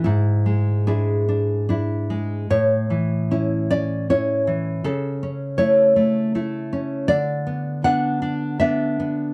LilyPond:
\new Staff \with { instrumentName = "Nylon-string guitar" } { \time 3/4 \key a \major \tempo 4 = 78 << { e'4 gis'4. r8 | cis''4. d''8 cis''4 | a'4 cis''4. r8 | d''4 fis''4 e''4 | } \\ { gis,8 gis8 <d' e'>8 d'8 <d' e'>8 gis8 | a,8 e8 <cis' e'>8 cis'8 <cis' e'>8 e8 | cis8 cis'8 <a e'>8 a8 <a e'>8 cis'8 | d8 b8 <b d'>8 d'8 <b d'>8 b8 | } >> }